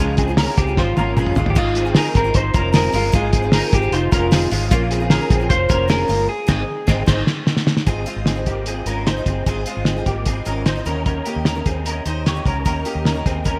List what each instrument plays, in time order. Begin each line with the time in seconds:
Already playing: clean electric guitar G#4
0.00 fingered electric bass C#2, steel-string acoustic guitar C#3 F3 G#3 C#4 F4, clean electric guitar G#3 F4
0.17 clean electric guitar C4 G#4, kick, hi-hat pedal, open hi-hat
0.28 steel-string acoustic guitar G#3 C#4 F4
0.37 clean electric guitar C#4 A#4, snare, hi-hat pedal, open hi-hat
0.57 fingered electric bass C#2, clean electric guitar C4 G4 G#4, kick, hi-hat pedal, open hi-hat
0.67 steel-string acoustic guitar G#3 C#4 F4
0.77 fingered electric bass G#1, clean electric guitar F4 C5, kick, snare
0.97 fingered electric bass G#1, steel-string acoustic guitar F3 G#3 C#4 F4, clean electric guitar C#4 F4 A#4, high tom
1.17 steel-string acoustic guitar F3 G#3 C#4 F4, clean electric guitar C#4 G#4, mid tom
1.26 mid tom
1.35 fingered electric bass G#1, steel-string acoustic guitar G#3 D#4 F4 C5, clean electric guitar G#3 F4, floor tom
1.46 clean electric guitar G4, floor tom
1.55 steel-string acoustic guitar G#3 D#4 F4 C5, clean electric guitar G#3 F4, kick, crash
1.75 clean electric guitar C4 G#4, hi-hat pedal, open hi-hat
1.85 steel-string acoustic guitar D#4 F4 C5
1.95 clean electric guitar D#4 G#4 A#4, snare, hi-hat pedal, open hi-hat
2.15 fingered electric bass G#1, clean electric guitar C4 G#4 A#4, kick, snare, hi-hat pedal, open hi-hat
2.24 steel-string acoustic guitar D#4 F4 C5
2.34 fingered electric bass G#1, clean electric guitar D#4 C5, kick, hi-hat pedal, open hi-hat
2.54 fingered electric bass F1, steel-string acoustic guitar G#3 D#4 F4 C5, clean electric guitar C#4 A#4, kick, hi-hat pedal, open hi-hat
2.73 steel-string acoustic guitar G#3 D#4 F4 C5, clean electric guitar C4 G#4 A#4, snare, hi-hat pedal, open hi-hat
2.93 fingered electric bass G1, steel-string acoustic guitar G#3 D#4 F4 C5, clean electric guitar G#3 F4 A#4, hi-hat pedal, open hi-hat
3.12 fingered electric bass G#1, steel-string acoustic guitar G#3 D#4 F4 C5, clean electric guitar G#3 F4 G#4, kick, hi-hat pedal, open hi-hat
3.33 clean electric guitar C4 G#4, kick, hi-hat pedal, open hi-hat
3.42 steel-string acoustic guitar D#4 F4 C5
3.52 clean electric guitar D#4 G#4 A#4, snare, hi-hat pedal, open hi-hat
3.73 fingered electric bass G#1, clean electric guitar C4 G4 G#4, kick, hi-hat pedal, open hi-hat
3.82 steel-string acoustic guitar D#4 F4 C5
3.92 fingered electric bass F1, clean electric guitar D#4 F4 C5, hi-hat pedal, open hi-hat
4.11 fingered electric bass F1, steel-string acoustic guitar G#3 D#4 F4 C5, clean electric guitar C#4 F4 A#4, kick, hi-hat pedal, open hi-hat
4.31 steel-string acoustic guitar G#3 D#4 F4 C5, clean electric guitar C4 G#4, snare, hi-hat pedal, open hi-hat
4.51 fingered electric bass G#1, steel-string acoustic guitar G#3 D#4 F4 C5, clean electric guitar G#3 F4, hi-hat pedal, open hi-hat
4.71 fingered electric bass A#1, steel-string acoustic guitar A#3 C#4 F4 A#4, clean electric guitar A#3 F4, kick, hi-hat pedal, open hi-hat
4.91 clean electric guitar C4 G#4, hi-hat pedal, open hi-hat
5.00 steel-string acoustic guitar C#4 F4 A#4
5.10 clean electric guitar C#4 G#4 A#4, snare, hi-hat pedal, open hi-hat
5.30 fingered electric bass A#1, clean electric guitar C4 G#4, kick, hi-hat pedal, open hi-hat
5.39 steel-string acoustic guitar C#4 F4 A#4
5.49 fingered electric bass F1, clean electric guitar F4 C5, kick, hi-hat pedal, open hi-hat
5.69 fingered electric bass F1, steel-string acoustic guitar A#3 C#4 F4 A#4, clean electric guitar C#4 A#4, kick, hi-hat pedal, open hi-hat
5.88 steel-string acoustic guitar A#3 C#4 F4 A#4, clean electric guitar C#4 G#4 A#4, snare, hi-hat pedal, open hi-hat
6.08 fingered electric bass G1, clean electric guitar G#3 F4, steel-string acoustic guitar A#3 C#4 F4 A#4, hi-hat pedal, open hi-hat
6.29 clean electric guitar G#4
6.47 fingered electric bass G#1, clean electric guitar C4 G#4, steel-string acoustic guitar C4 D#4 G#4, kick, snare, crash
6.87 fingered electric bass G#1, clean electric guitar C4 G#4, steel-string acoustic guitar C4 D#4 G#4, kick, snare
7.06 fingered electric bass G#1, steel-string acoustic guitar C4 D#4 G#4, clean electric guitar D#4 C5, kick, snare, crash
7.27 snare
7.47 snare
7.57 snare
7.67 snare
7.77 snare
7.86 fingered electric bass G#1, steel-string acoustic guitar G#3 C4 F4 C5 D#5, clean electric guitar C4 G#4, kick, closed hi-hat
8.06 steel-string acoustic guitar G#3 C4 F4 C5 D#5, clean electric guitar G#3 F4, closed hi-hat
8.16 fingered electric bass G#1
8.26 clean electric guitar C4 G#4, snare, closed hi-hat
8.35 steel-string acoustic guitar F4 C5 D#5
8.46 clean electric guitar A#3 G4, kick, closed hi-hat
8.66 steel-string acoustic guitar C4 F4 C5 D#5, clean electric guitar C4 G#4, closed hi-hat
8.86 fingered electric bass G#1, steel-string acoustic guitar G#3 C4 F4 C5 D#5, clean electric guitar C#4 A#4, closed hi-hat
9.06 clean electric guitar D#4 C5, snare, closed hi-hat
9.16 steel-string acoustic guitar F4 C5 D#5
9.26 fingered electric bass G1, clean electric guitar C4 G#4, kick, closed hi-hat
9.46 fingered electric bass G#1, steel-string acoustic guitar G#3 C4 F4 C5 D#5, clean electric guitar C4 G#4, kick, closed hi-hat
9.66 steel-string acoustic guitar G#3 C4 F4 C5 D#5, clean electric guitar G#3 F4, closed hi-hat
9.77 fingered electric bass G#1
9.85 clean electric guitar C4 G#4, snare, closed hi-hat
9.96 steel-string acoustic guitar F4 C5 D#5
10.06 fingered electric bass G#1, clean electric guitar A#3 G4, kick, closed hi-hat
10.26 steel-string acoustic guitar C4 F4 C5 D#5, clean electric guitar C4 G#4, kick, closed hi-hat
10.45 fingered electric bass G#1, steel-string acoustic guitar G#3 C4 F4 C5 D#5, clean electric guitar C#4 A#4, closed hi-hat
10.66 clean electric guitar D#4 C5, snare, closed hi-hat
10.76 steel-string acoustic guitar F4 C5 D#5
10.85 fingered electric bass D#2, steel-string acoustic guitar D#3 A#3 C#4 G4 A#4 D#5, clean electric guitar C#4 A#4, closed hi-hat
11.06 clean electric guitar C#4 A#4, kick, closed hi-hat
11.25 steel-string acoustic guitar D#3 A#3 C#4 G4 A#4 D#5, clean electric guitar A#3 G4, closed hi-hat
11.36 fingered electric bass D#2
11.45 clean electric guitar C#4 A#4, snare, closed hi-hat
11.55 steel-string acoustic guitar C#4 G4 A#4 D#5
11.66 fingered electric bass D#2, clean electric guitar C4 G#4, kick, closed hi-hat
11.85 steel-string acoustic guitar C#4 G4 A#4 D#5, clean electric guitar C#4 A#4, closed hi-hat
12.05 fingered electric bass D#2, steel-string acoustic guitar D#3 A#3 C#4 G4 A#4 D#5, clean electric guitar D#4 C5, closed hi-hat
12.26 clean electric guitar G4 C#5, snare, closed hi-hat
12.35 steel-string acoustic guitar C#4 G4 A#4 D#5
12.46 fingered electric bass C#2, clean electric guitar C#4 A#4, kick, closed hi-hat
12.65 fingered electric bass D#2, steel-string acoustic guitar D#3 A#3 C#4 G4 A#4 D#5, clean electric guitar C#4 A#4, kick, closed hi-hat
12.85 steel-string acoustic guitar D#3 A#3 C#4 G4 A#4 D#5, clean electric guitar A#3 G4, closed hi-hat
12.95 fingered electric bass D#2
13.05 clean electric guitar C#4 A#4, snare, closed hi-hat
13.14 steel-string acoustic guitar C#4 G4 A#4 D#5
13.26 fingered electric bass D#2, clean electric guitar C4 G#4, kick, snare, closed hi-hat
13.44 steel-string acoustic guitar C#4 G4 A#4 D#5, clean electric guitar C#4 A#4, kick, closed hi-hat